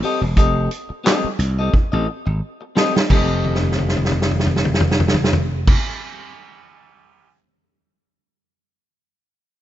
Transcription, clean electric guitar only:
0.03 C4 G4 A4 D#5
0.22 muted clean electric guitar stroke
0.36 C4 G4 A4 D#5
0.89 muted clean electric guitar stroke
1.04 C4 G4 A4 D#5
1.39 muted clean electric guitar stroke
1.59 C4 G4 A4 D#5
1.74 muted clean electric guitar stroke
1.92 C4 G4 A4 D#5
2.26 muted clean electric guitar stroke
2.61 muted clean electric guitar stroke
2.75 C4 G4 A4 D#5
2.95 muted clean electric guitar stroke
3.09 C4 G4 A4
3.14 D#5

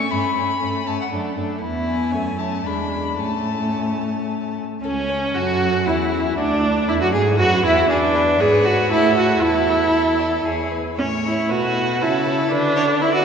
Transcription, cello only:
0.12 G2
0.37 G2
0.63 G2
0.88 G2
1.13 F#2
1.38 F#2
1.62 E2
2.13 F#2
2.66 E2
3.20 A2
4.84 C#2
5.35 F#2
5.87 E2
6.39 D2
6.89 E2
7.02 F#2
7.14 G#2
7.39 F#2
7.65 E2
7.90 E2
8.40 G#2
8.91 A2
9.42 E2
10.45 E2
10.99 A2
11.51 B2
12.01 C#3
12.52 D3

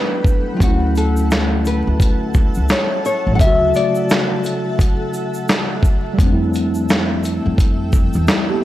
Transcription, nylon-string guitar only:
0.57 F4
0.63 F#4
0.97 A4
1.67 B4
2.71 C#5
3.06 C#5
3.35 F#5
3.41 E5
3.76 D5

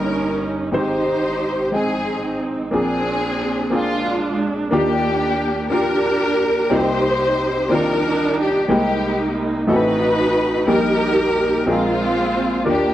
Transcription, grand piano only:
Already playing: G1 G2 A#3 C#4 D#4 G4 A#4
0.72 G#1 G#2 G#3 C4 D#4 G4 C5
1.72 G#3 C4 D#4 G#4 G5
2.71 A#1 A#2 A#3 C4 D4 F4 G#4
3.70 A#3 C4 D4 F4 G#4
4.71 D#2 D#3 A#3 D4 F4 G4
5.70 A#3 D4 F4 G4
6.70 C2 C3 A#3 C4 D#4 F4 D5
6.79 G4
7.69 D#3 A#3 C4 F4 D5
8.68 C2 C3 G#3 A#3 C4 D#4 G4
9.67 A1 A2 A3 B3 D#4 F#4 A4
9.74 C4
10.66 A#1 A#2 G3 A#3 D#4 G4 A#4
11.66 A#1 A#2 C4 D#4 F4 G#4 A#4
12.64 D#2 D#3 A#3 D4 F4 G4 A#4

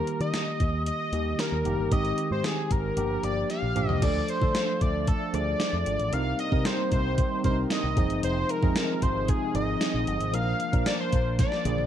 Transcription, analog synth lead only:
Already playing: A#4
0.21 D#5
0.87 D#5
1.40 A#4
1.92 D#5
2.32 C5
2.45 G#4
2.72 A#4
3.24 D5
3.51 F5
3.90 D#5
4.03 D5
4.29 C5
4.82 D5
5.08 A4
5.34 D5
6.13 F5
6.39 D#5
6.66 C5
6.93 C5
7.45 C5
7.71 D#5
8.24 C5
8.50 A#4
9.03 C5
9.29 G#4
9.55 D#5
10.34 F5
10.87 D5
11.00 C5
11.40 D5

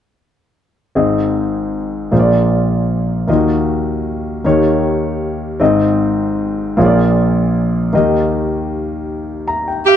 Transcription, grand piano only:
0.95 G#1 G#2 C4 D#4 G#4 D#5
2.11 A#1 A#2 A#3 F4 G#4 C5
2.19 D5
3.27 D#2 D#3 A#3 D#4 F4 D#5
3.35 F#4
4.44 D#2 D#3 A#3 D#4 G4 C#5
5.60 G#1 G#2 C4 D#4 G#4 D#5
6.77 A#1 A#2 A#3 F4 G#4 C#5
6.85 D5
7.93 D#2 D#3 A#3 D#4 G4 D#5
9.48 A#5
9.68 G5
9.88 F5

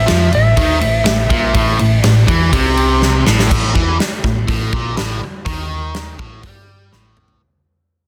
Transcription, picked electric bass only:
0.10 F2
0.36 A1
0.58 D#2
0.84 A1
1.07 A1
1.30 A#1
1.55 A1
1.82 A1
2.04 A1
2.28 E2
2.53 C2
3.27 A1
3.51 A1
3.75 E2
4.24 A1
4.48 A1
4.73 A#1
4.99 A1
5.46 D#2
6.19 A1
6.44 G2
6.93 A1

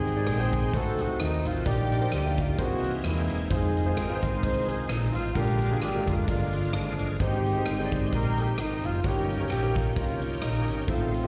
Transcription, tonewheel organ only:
Already playing: D#3 G#3 C4 G5
0.74 A3 B3 F#4
0.79 C4
1.65 G3 A#3 G4 D5
2.57 D#3 A#3 C4 G#4
2.63 E3
3.51 D#3 G#3 C4 E4
3.57 F4
5.36 D3 G#3 A#3 F4
7.20 D#3 G#3 C4 G4
9.03 D#3 A#3 C#4 F#4
9.10 G4
10.88 D#3 A3 C4 E4
10.94 F4

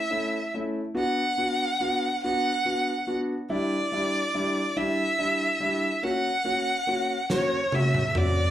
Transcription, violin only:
Already playing: E5
0.99 F#5
2.23 F#5
3.51 D5
4.77 E5
6.02 F#5
7.31 C#5
7.75 E5
8.09 E5
8.17 D5

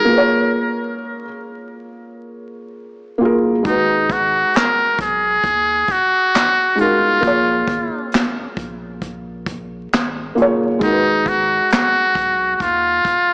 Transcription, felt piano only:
0.05 A#3 F4
0.09 G#4 B4
0.18 C#5
3.18 A#3 F4
3.22 G#4 A#4
3.63 G#3 D#4
3.67 F#4 B4
6.75 G#3 D#4
6.80 F#4 A#4
7.21 A#3 F4
7.25 G#4 C#5
10.35 A#3 F4
10.40 G#4 C#5
10.79 G#3 D#4
10.83 F#4 A#4
10.92 B4

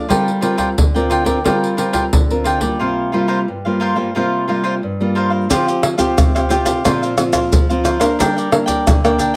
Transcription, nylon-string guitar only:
0.09 G3 C4 F4 A#4
0.42 C4 F4 A#4
0.77 D3
0.95 C4 F4 A#4
1.25 C4 F4 A#4
1.45 G3 C4 F4 A#4
1.78 C4 F4 A#4
2.13 D3
2.30 C4 F4 A#4
2.61 G3 A#3 F4
2.81 C3
3.13 G3 A#3 F4
3.48 G2
3.66 G3 A#3 F4
3.96 G3 A#3 F4
4.16 C3 G3 A#3 F4
4.48 G3 A#3 F4
4.83 G2
5.00 G3 A#3 F4
5.50 F3 C4 F4 G4
5.98 C4 F4 G4
6.17 C3
6.50 C4 F4 G4
6.85 A#2 F3 C4 F4
7.17 F3 C4 F4
7.52 F3
7.70 F3 C4 F4
8.00 A#3 D4 A#4
8.19 G3
8.51 A#3 D4 A#4
8.87 D3
9.04 A#3 D4 A#4

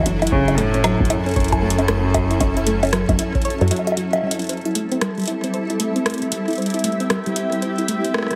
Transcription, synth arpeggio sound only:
0.06 F#3
0.22 E4
0.32 C#5
0.48 E4
0.58 A3
0.74 C#4
0.84 F#3
1.00 F#3
1.10 E4
1.26 C#4
1.36 C#5
1.52 E4
1.62 A3
1.78 C#4
1.88 A3
2.04 F#3
2.14 F#3
2.31 E4
2.40 C#5
2.57 E4
2.67 A3
2.83 C#4
2.93 F#3
3.09 F#3
3.19 E4
3.35 C#4
3.45 C#5
3.61 F#3
3.71 F#3
3.87 F#3
3.97 F#3
4.13 F#3
4.23 G3
4.39 E4
4.49 C5
4.65 E4
4.75 A3
4.92 C4
5.01 G3
5.18 G3
5.27 E4
5.44 C4
5.54 C5
5.70 E4
5.80 A3
5.96 C4
6.06 A3
6.22 G3
6.32 G3
6.48 E4
6.58 C5
6.74 E4
6.84 A3
7.00 C4
7.10 G3
7.26 G3
7.36 E4
7.52 C4
7.62 C5
7.78 E4
7.88 A3
8.05 C4
8.14 A3
8.31 G3

